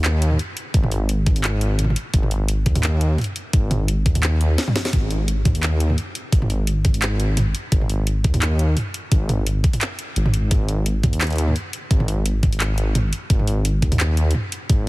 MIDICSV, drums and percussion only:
0, 0, Header, 1, 2, 480
1, 0, Start_track
1, 0, Tempo, 348837
1, 1022, Time_signature, 4, 2, 24, 8
1, 20483, End_track
2, 0, Start_track
2, 0, Title_t, "Drums"
2, 61, Note_on_c, 9, 39, 118
2, 61, Note_on_c, 9, 42, 78
2, 199, Note_off_c, 9, 39, 0
2, 199, Note_off_c, 9, 42, 0
2, 302, Note_on_c, 9, 42, 68
2, 431, Note_on_c, 9, 45, 48
2, 439, Note_off_c, 9, 42, 0
2, 541, Note_on_c, 9, 46, 71
2, 569, Note_off_c, 9, 45, 0
2, 679, Note_off_c, 9, 46, 0
2, 780, Note_on_c, 9, 42, 66
2, 918, Note_off_c, 9, 42, 0
2, 1020, Note_on_c, 9, 42, 78
2, 1021, Note_on_c, 9, 36, 120
2, 1149, Note_on_c, 9, 45, 77
2, 1158, Note_off_c, 9, 42, 0
2, 1159, Note_off_c, 9, 36, 0
2, 1260, Note_on_c, 9, 46, 71
2, 1287, Note_off_c, 9, 45, 0
2, 1397, Note_off_c, 9, 46, 0
2, 1500, Note_on_c, 9, 42, 78
2, 1638, Note_off_c, 9, 42, 0
2, 1740, Note_on_c, 9, 42, 58
2, 1740, Note_on_c, 9, 45, 54
2, 1741, Note_on_c, 9, 36, 111
2, 1871, Note_on_c, 9, 46, 68
2, 1877, Note_off_c, 9, 42, 0
2, 1877, Note_off_c, 9, 45, 0
2, 1879, Note_off_c, 9, 36, 0
2, 1979, Note_on_c, 9, 39, 110
2, 1979, Note_on_c, 9, 42, 75
2, 2008, Note_off_c, 9, 46, 0
2, 2117, Note_off_c, 9, 39, 0
2, 2117, Note_off_c, 9, 42, 0
2, 2219, Note_on_c, 9, 42, 67
2, 2356, Note_off_c, 9, 42, 0
2, 2460, Note_on_c, 9, 42, 78
2, 2460, Note_on_c, 9, 45, 36
2, 2539, Note_off_c, 9, 45, 0
2, 2539, Note_on_c, 9, 45, 49
2, 2597, Note_off_c, 9, 42, 0
2, 2619, Note_off_c, 9, 45, 0
2, 2619, Note_on_c, 9, 45, 63
2, 2700, Note_on_c, 9, 42, 66
2, 2756, Note_off_c, 9, 45, 0
2, 2837, Note_off_c, 9, 42, 0
2, 2939, Note_on_c, 9, 42, 84
2, 2941, Note_on_c, 9, 36, 117
2, 3070, Note_on_c, 9, 45, 54
2, 3076, Note_off_c, 9, 42, 0
2, 3079, Note_off_c, 9, 36, 0
2, 3180, Note_on_c, 9, 46, 70
2, 3208, Note_off_c, 9, 45, 0
2, 3318, Note_off_c, 9, 46, 0
2, 3419, Note_on_c, 9, 42, 79
2, 3557, Note_off_c, 9, 42, 0
2, 3660, Note_on_c, 9, 42, 62
2, 3662, Note_on_c, 9, 36, 110
2, 3791, Note_on_c, 9, 45, 85
2, 3791, Note_on_c, 9, 46, 74
2, 3797, Note_off_c, 9, 42, 0
2, 3799, Note_off_c, 9, 36, 0
2, 3899, Note_on_c, 9, 39, 108
2, 3899, Note_on_c, 9, 42, 77
2, 3928, Note_off_c, 9, 45, 0
2, 3928, Note_off_c, 9, 46, 0
2, 4037, Note_off_c, 9, 39, 0
2, 4037, Note_off_c, 9, 42, 0
2, 4142, Note_on_c, 9, 42, 68
2, 4279, Note_off_c, 9, 42, 0
2, 4381, Note_on_c, 9, 45, 56
2, 4381, Note_on_c, 9, 46, 31
2, 4423, Note_off_c, 9, 46, 0
2, 4423, Note_on_c, 9, 46, 44
2, 4460, Note_off_c, 9, 46, 0
2, 4460, Note_on_c, 9, 46, 56
2, 4518, Note_off_c, 9, 45, 0
2, 4598, Note_off_c, 9, 46, 0
2, 4621, Note_on_c, 9, 42, 66
2, 4758, Note_off_c, 9, 42, 0
2, 4862, Note_on_c, 9, 42, 85
2, 4864, Note_on_c, 9, 36, 122
2, 5000, Note_off_c, 9, 42, 0
2, 5001, Note_off_c, 9, 36, 0
2, 5102, Note_on_c, 9, 45, 89
2, 5102, Note_on_c, 9, 46, 73
2, 5240, Note_off_c, 9, 45, 0
2, 5240, Note_off_c, 9, 46, 0
2, 5343, Note_on_c, 9, 42, 85
2, 5481, Note_off_c, 9, 42, 0
2, 5584, Note_on_c, 9, 36, 112
2, 5584, Note_on_c, 9, 42, 63
2, 5714, Note_on_c, 9, 45, 57
2, 5714, Note_on_c, 9, 46, 73
2, 5721, Note_off_c, 9, 36, 0
2, 5721, Note_off_c, 9, 42, 0
2, 5823, Note_on_c, 9, 39, 115
2, 5823, Note_on_c, 9, 42, 81
2, 5852, Note_off_c, 9, 45, 0
2, 5852, Note_off_c, 9, 46, 0
2, 5960, Note_off_c, 9, 39, 0
2, 5960, Note_off_c, 9, 42, 0
2, 6064, Note_on_c, 9, 42, 74
2, 6202, Note_off_c, 9, 42, 0
2, 6305, Note_on_c, 9, 38, 65
2, 6305, Note_on_c, 9, 42, 79
2, 6436, Note_on_c, 9, 45, 85
2, 6436, Note_on_c, 9, 48, 67
2, 6443, Note_off_c, 9, 38, 0
2, 6443, Note_off_c, 9, 42, 0
2, 6545, Note_on_c, 9, 38, 90
2, 6545, Note_on_c, 9, 42, 67
2, 6573, Note_off_c, 9, 45, 0
2, 6573, Note_off_c, 9, 48, 0
2, 6676, Note_off_c, 9, 38, 0
2, 6676, Note_on_c, 9, 38, 90
2, 6682, Note_off_c, 9, 42, 0
2, 6785, Note_on_c, 9, 36, 117
2, 6785, Note_on_c, 9, 42, 85
2, 6785, Note_on_c, 9, 45, 60
2, 6813, Note_off_c, 9, 38, 0
2, 6922, Note_off_c, 9, 36, 0
2, 6923, Note_off_c, 9, 42, 0
2, 6923, Note_off_c, 9, 45, 0
2, 7025, Note_on_c, 9, 46, 67
2, 7163, Note_off_c, 9, 46, 0
2, 7265, Note_on_c, 9, 42, 83
2, 7403, Note_off_c, 9, 42, 0
2, 7504, Note_on_c, 9, 36, 115
2, 7505, Note_on_c, 9, 42, 68
2, 7505, Note_on_c, 9, 45, 85
2, 7636, Note_on_c, 9, 46, 68
2, 7642, Note_off_c, 9, 36, 0
2, 7643, Note_off_c, 9, 42, 0
2, 7643, Note_off_c, 9, 45, 0
2, 7746, Note_on_c, 9, 39, 118
2, 7746, Note_on_c, 9, 42, 84
2, 7774, Note_off_c, 9, 46, 0
2, 7883, Note_off_c, 9, 39, 0
2, 7883, Note_off_c, 9, 42, 0
2, 7986, Note_on_c, 9, 42, 72
2, 8117, Note_on_c, 9, 45, 53
2, 8124, Note_off_c, 9, 42, 0
2, 8227, Note_on_c, 9, 46, 67
2, 8255, Note_off_c, 9, 45, 0
2, 8365, Note_off_c, 9, 46, 0
2, 8465, Note_on_c, 9, 42, 70
2, 8603, Note_off_c, 9, 42, 0
2, 8703, Note_on_c, 9, 36, 127
2, 8704, Note_on_c, 9, 42, 92
2, 8834, Note_on_c, 9, 45, 75
2, 8841, Note_off_c, 9, 36, 0
2, 8842, Note_off_c, 9, 42, 0
2, 8943, Note_on_c, 9, 46, 63
2, 8972, Note_off_c, 9, 45, 0
2, 9081, Note_off_c, 9, 46, 0
2, 9181, Note_on_c, 9, 42, 82
2, 9319, Note_off_c, 9, 42, 0
2, 9421, Note_on_c, 9, 42, 69
2, 9421, Note_on_c, 9, 45, 53
2, 9423, Note_on_c, 9, 36, 117
2, 9552, Note_on_c, 9, 46, 64
2, 9559, Note_off_c, 9, 42, 0
2, 9559, Note_off_c, 9, 45, 0
2, 9560, Note_off_c, 9, 36, 0
2, 9662, Note_on_c, 9, 39, 118
2, 9662, Note_on_c, 9, 42, 80
2, 9689, Note_off_c, 9, 46, 0
2, 9800, Note_off_c, 9, 39, 0
2, 9800, Note_off_c, 9, 42, 0
2, 9902, Note_on_c, 9, 42, 70
2, 10040, Note_off_c, 9, 42, 0
2, 10142, Note_on_c, 9, 42, 82
2, 10142, Note_on_c, 9, 45, 82
2, 10279, Note_off_c, 9, 42, 0
2, 10279, Note_off_c, 9, 45, 0
2, 10383, Note_on_c, 9, 42, 74
2, 10521, Note_off_c, 9, 42, 0
2, 10622, Note_on_c, 9, 42, 86
2, 10623, Note_on_c, 9, 36, 127
2, 10754, Note_on_c, 9, 45, 50
2, 10760, Note_off_c, 9, 42, 0
2, 10761, Note_off_c, 9, 36, 0
2, 10864, Note_on_c, 9, 46, 65
2, 10892, Note_off_c, 9, 45, 0
2, 11001, Note_off_c, 9, 46, 0
2, 11102, Note_on_c, 9, 42, 83
2, 11240, Note_off_c, 9, 42, 0
2, 11343, Note_on_c, 9, 42, 65
2, 11344, Note_on_c, 9, 36, 123
2, 11474, Note_on_c, 9, 45, 80
2, 11474, Note_on_c, 9, 46, 65
2, 11481, Note_off_c, 9, 36, 0
2, 11481, Note_off_c, 9, 42, 0
2, 11583, Note_on_c, 9, 39, 122
2, 11583, Note_on_c, 9, 42, 81
2, 11612, Note_off_c, 9, 45, 0
2, 11612, Note_off_c, 9, 46, 0
2, 11720, Note_off_c, 9, 39, 0
2, 11720, Note_off_c, 9, 42, 0
2, 11823, Note_on_c, 9, 42, 71
2, 11961, Note_off_c, 9, 42, 0
2, 12063, Note_on_c, 9, 45, 51
2, 12063, Note_on_c, 9, 46, 67
2, 12201, Note_off_c, 9, 45, 0
2, 12201, Note_off_c, 9, 46, 0
2, 12305, Note_on_c, 9, 42, 71
2, 12443, Note_off_c, 9, 42, 0
2, 12543, Note_on_c, 9, 42, 83
2, 12544, Note_on_c, 9, 36, 127
2, 12681, Note_off_c, 9, 36, 0
2, 12681, Note_off_c, 9, 42, 0
2, 12785, Note_on_c, 9, 45, 76
2, 12785, Note_on_c, 9, 46, 66
2, 12923, Note_off_c, 9, 45, 0
2, 12923, Note_off_c, 9, 46, 0
2, 13024, Note_on_c, 9, 42, 84
2, 13162, Note_off_c, 9, 42, 0
2, 13264, Note_on_c, 9, 36, 118
2, 13264, Note_on_c, 9, 42, 65
2, 13394, Note_on_c, 9, 45, 52
2, 13394, Note_on_c, 9, 46, 65
2, 13401, Note_off_c, 9, 36, 0
2, 13402, Note_off_c, 9, 42, 0
2, 13504, Note_on_c, 9, 39, 124
2, 13504, Note_on_c, 9, 42, 77
2, 13532, Note_off_c, 9, 45, 0
2, 13532, Note_off_c, 9, 46, 0
2, 13641, Note_off_c, 9, 39, 0
2, 13641, Note_off_c, 9, 42, 0
2, 13742, Note_on_c, 9, 42, 68
2, 13880, Note_off_c, 9, 42, 0
2, 13983, Note_on_c, 9, 42, 81
2, 14113, Note_on_c, 9, 45, 76
2, 14121, Note_off_c, 9, 42, 0
2, 14222, Note_on_c, 9, 42, 72
2, 14251, Note_off_c, 9, 45, 0
2, 14360, Note_off_c, 9, 42, 0
2, 14462, Note_on_c, 9, 42, 81
2, 14462, Note_on_c, 9, 45, 55
2, 14464, Note_on_c, 9, 36, 123
2, 14600, Note_off_c, 9, 42, 0
2, 14600, Note_off_c, 9, 45, 0
2, 14602, Note_off_c, 9, 36, 0
2, 14703, Note_on_c, 9, 46, 70
2, 14840, Note_off_c, 9, 46, 0
2, 14943, Note_on_c, 9, 42, 77
2, 15081, Note_off_c, 9, 42, 0
2, 15184, Note_on_c, 9, 36, 106
2, 15185, Note_on_c, 9, 42, 63
2, 15185, Note_on_c, 9, 45, 80
2, 15315, Note_on_c, 9, 46, 65
2, 15321, Note_off_c, 9, 36, 0
2, 15322, Note_off_c, 9, 42, 0
2, 15322, Note_off_c, 9, 45, 0
2, 15425, Note_on_c, 9, 39, 117
2, 15425, Note_on_c, 9, 42, 70
2, 15453, Note_off_c, 9, 46, 0
2, 15468, Note_off_c, 9, 42, 0
2, 15468, Note_on_c, 9, 42, 59
2, 15505, Note_off_c, 9, 42, 0
2, 15505, Note_on_c, 9, 42, 48
2, 15555, Note_off_c, 9, 42, 0
2, 15555, Note_on_c, 9, 42, 39
2, 15562, Note_off_c, 9, 39, 0
2, 15584, Note_off_c, 9, 42, 0
2, 15584, Note_on_c, 9, 42, 35
2, 15627, Note_off_c, 9, 42, 0
2, 15627, Note_on_c, 9, 42, 29
2, 15664, Note_off_c, 9, 42, 0
2, 15664, Note_on_c, 9, 42, 68
2, 15794, Note_on_c, 9, 45, 49
2, 15802, Note_off_c, 9, 42, 0
2, 15903, Note_on_c, 9, 46, 66
2, 15931, Note_off_c, 9, 45, 0
2, 16040, Note_off_c, 9, 46, 0
2, 16144, Note_on_c, 9, 42, 68
2, 16281, Note_off_c, 9, 42, 0
2, 16384, Note_on_c, 9, 36, 121
2, 16384, Note_on_c, 9, 42, 78
2, 16514, Note_on_c, 9, 45, 78
2, 16522, Note_off_c, 9, 36, 0
2, 16522, Note_off_c, 9, 42, 0
2, 16625, Note_on_c, 9, 46, 71
2, 16652, Note_off_c, 9, 45, 0
2, 16762, Note_off_c, 9, 46, 0
2, 16864, Note_on_c, 9, 42, 78
2, 17002, Note_off_c, 9, 42, 0
2, 17103, Note_on_c, 9, 36, 104
2, 17103, Note_on_c, 9, 42, 60
2, 17103, Note_on_c, 9, 45, 53
2, 17235, Note_on_c, 9, 46, 70
2, 17241, Note_off_c, 9, 36, 0
2, 17241, Note_off_c, 9, 42, 0
2, 17241, Note_off_c, 9, 45, 0
2, 17343, Note_on_c, 9, 39, 113
2, 17343, Note_on_c, 9, 42, 76
2, 17372, Note_off_c, 9, 46, 0
2, 17481, Note_off_c, 9, 39, 0
2, 17481, Note_off_c, 9, 42, 0
2, 17582, Note_on_c, 9, 42, 69
2, 17719, Note_off_c, 9, 42, 0
2, 17821, Note_on_c, 9, 42, 82
2, 17821, Note_on_c, 9, 45, 80
2, 17959, Note_off_c, 9, 42, 0
2, 17959, Note_off_c, 9, 45, 0
2, 18062, Note_on_c, 9, 42, 65
2, 18200, Note_off_c, 9, 42, 0
2, 18301, Note_on_c, 9, 36, 120
2, 18301, Note_on_c, 9, 42, 82
2, 18432, Note_on_c, 9, 45, 51
2, 18438, Note_off_c, 9, 42, 0
2, 18439, Note_off_c, 9, 36, 0
2, 18541, Note_on_c, 9, 46, 73
2, 18569, Note_off_c, 9, 45, 0
2, 18679, Note_off_c, 9, 46, 0
2, 18782, Note_on_c, 9, 42, 78
2, 18919, Note_off_c, 9, 42, 0
2, 19021, Note_on_c, 9, 36, 104
2, 19022, Note_on_c, 9, 42, 66
2, 19152, Note_on_c, 9, 45, 82
2, 19152, Note_on_c, 9, 46, 74
2, 19158, Note_off_c, 9, 36, 0
2, 19160, Note_off_c, 9, 42, 0
2, 19261, Note_on_c, 9, 39, 112
2, 19261, Note_on_c, 9, 42, 76
2, 19289, Note_off_c, 9, 45, 0
2, 19289, Note_off_c, 9, 46, 0
2, 19399, Note_off_c, 9, 39, 0
2, 19399, Note_off_c, 9, 42, 0
2, 19501, Note_on_c, 9, 42, 69
2, 19638, Note_off_c, 9, 42, 0
2, 19686, Note_on_c, 9, 46, 67
2, 19741, Note_on_c, 9, 45, 56
2, 19823, Note_off_c, 9, 46, 0
2, 19878, Note_off_c, 9, 45, 0
2, 19982, Note_on_c, 9, 42, 66
2, 20119, Note_off_c, 9, 42, 0
2, 20220, Note_on_c, 9, 42, 85
2, 20222, Note_on_c, 9, 36, 122
2, 20358, Note_off_c, 9, 42, 0
2, 20359, Note_off_c, 9, 36, 0
2, 20483, End_track
0, 0, End_of_file